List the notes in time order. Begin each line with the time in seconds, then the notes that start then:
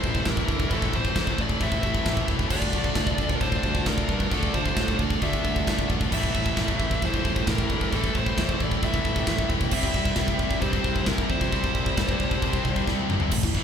Already playing: A2 E3 A3 E4 C5 A5
0.00 C4 E4, kick
0.04 A1 C4 E4
0.14 C4 E4, kick
0.24 A1 C4 E4, kick, snare, china
0.29 C4 E4 A#4
0.37 C4 E4, kick
0.47 D2 C4 E4, kick
0.54 C4 E4
0.60 C4 E4, kick
0.70 A1 A2 E3 A3 C4 E4, kick, china
0.74 A4
0.79 C4 E4, kick
0.86 C4 E4
0.93 A1 C4 E4 C5, kick
1.02 C4 E4, kick
1.10 C4 E4
1.16 E2 C4 E4, kick, snare, china
1.26 C4 E4, kick
1.34 C4 E4
1.38 A1 C4 E4 D5, kick
1.49 C4 E4, kick
1.57 A2 C4 E4, kick
1.61 A1 E3 A3 E5, china
1.65 C4 E4
1.72 C4 E4, kick
1.80 A1 C4 E4, kick
1.87 C4 E4
1.95 C4 E4, kick
2.04 A1 C4 E4, kick, snare, china
2.12 C4 E4
2.17 C4 E4, kick
2.27 E1 C4 E4, kick
2.36 C4 E4, kick
2.43 C4 E4
2.49 D2 D3 A3 D4 F4 D5, kick, crash, china
2.59 D4 F4, kick
2.67 D4 F4
2.73 D2 D4 F4, kick
2.82 D4 F4, kick
2.89 D4 F4
2.95 D2 D4 F4, kick, snare, china
3.05 D4 F4, kick
3.13 D4 F4
3.18 D2 D4 F4, kick
3.29 D4 F4, kick
3.35 D4 F4 A#4
3.41 A2 D3 A3 D4 C5, kick, china
3.45 F4
3.52 D4 F4, kick
3.61 D2 D4 F4, kick
3.68 D4 F4
3.75 D4 F4, kick
3.83 D2 D4 F4, kick, snare, china
3.89 D4 F4 A#4
3.98 D4 F4, kick
4.07 G2 D4 F4, kick
4.14 D4 F4
4.20 D4 F4, kick
4.31 D2 D3 A3 D4 F4 A4, kick, china
4.40 D4 F4, kick
4.47 D4 F4
4.54 D2 D4 F4 C5, kick
4.62 D4 F4, kick
4.70 D4 F4
4.77 A2 D4 F4, kick, snare, china
4.86 D4 F4, kick
4.93 D4 F4
4.99 D2 D4 F4 D5, kick
5.10 D4 F4, kick
5.17 D4 F4
5.21 D2 D3 A3 D4 E5, kick, china
5.26 F4
5.33 D4 F4, kick
5.41 D4 F4, kick
5.45 D2 D4
5.50 F4
5.56 D4 F4, kick
5.64 D2 D4 F4, kick, china
5.68 F4, snare
5.72 D4
5.79 D4 F4, kick
5.88 A1 D4 F4, kick
5.96 D4 F4
6.01 D4 F4, kick
6.12 A1 A2 E3 A3 C4 E4 C5 E5, kick, china, crash
6.19 C4 E4
6.23 kick
6.28 C4 E4
6.35 A1 C4 E4, kick
6.43 C4 E4, kick
6.52 C4 E4
6.57 A1 C4 E4, kick, snare, china
6.66 C4 E4, kick
6.74 C4 E4
6.79 A1 C4 E4, kick
6.90 C4 E4, kick
6.98 A2 C4 E4
7.02 E2 E3 A3 C4 E4 C5, kick, china
7.13 C4 E4, kick
7.20 C4 E4
7.25 A1, kick
7.30 C4 E4
7.36 C4 E4, kick
7.44 A1 C4 E4, kick, snare, china
7.51 C4 E4 A#4
7.58 C4 E4, kick
7.68 D2 C4 E4, kick
7.74 C4 E4
7.81 C4 E4, kick
7.92 A1 A2 E3 A3 C4 E4 A4 G5, kick, china
8.00 C4 E4, kick
8.08 C4 E4
8.15 A1 C4 E4 C5, kick
8.23 C4 E4, kick
8.31 C4 E4
8.38 E2 C4 E4, kick, snare, china
8.47 C4 E4, kick
8.54 C4 E4
8.60 A1 C4 E4 D5, kick
8.70 C4 E4, kick
8.78 A2 C4 E4
8.83 A1 E3 A3 C4 E4 E5, kick, china
8.93 C4 E4, kick
9.02 A1 C4 E4, kick
9.09 C4 E4
9.16 C4 E4, kick
9.26 A1 C4 E4, kick, snare, china
9.31 C4 E4
9.39 C4 E4, kick
9.47 E1 C4 E4, kick
9.56 C4 E4
9.61 C4 E4, kick
9.71 C2 C3 G3 C4 E4 G4 E5, kick, crash, china
9.80 C4 E4, kick
9.88 C4 E4
9.94 C2 C4 E4, kick
10.04 C4 E4, kick
10.11 C4 E4
10.16 C2 C4 E4, kick, snare, china
10.26 C4 E4, kick
10.34 C4 E4
10.39 C2 C4 E4, kick
10.50 C4 E4, kick
10.58 C3 C4 E4 C5, china
10.62 G2 G3 C4, kick
10.66 E4
10.73 C4 E4, kick
10.81 C2 C4 E4, kick
10.89 C4 E4
10.96 C4 E4, kick
11.04 C2 C4 E4 A#4, kick, snare, china
11.12 C4 E4
11.18 C4 E4, kick
11.27 F2 C4 E4 C5, kick
11.35 C4 E4
11.41 C4 E4, kick
11.52 C2 C3 G3 C4 E4 A5, kick, china
11.60 C4 E4, kick
11.68 C4 E4
11.75 C2 C4 E4, kick
11.84 C4 E4, kick
11.91 C4 E4
11.97 G2 C4 E4, kick, snare, china
12.07 C4 E4, kick
12.15 C4 E4
12.20 C2 C4 E4, kick
12.30 C4 E4, kick
12.38 C2 C3 C4 E4, kick, china
12.44 G3 C4 E4
12.53 C4 E4, kick
12.61 C4 E4, kick
12.66 C2
12.70 C4 E4
12.76 C4 E4, kick
12.86 C2 C4 E4, kick, snare
12.93 C4 E4
13.02 C4 E4
13.10 G1 C4 E4, mid tom
13.17 C4 E4, floor tom
13.24 C4 E4
13.31 A1 A2 E3 A3 C4 E4 C5 E5, kick, crash
13.43 A1 A2 E3, kick
13.55 A1 A2 E3, kick